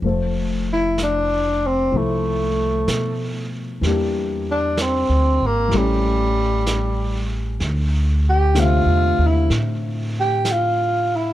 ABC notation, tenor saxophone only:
X:1
M:4/4
L:1/8
Q:"Swing" 1/4=63
K:F
V:1 name="Tenor saxophone"
z E D C A,3 z | z D C B, G,3 z | z G F E z G F E |]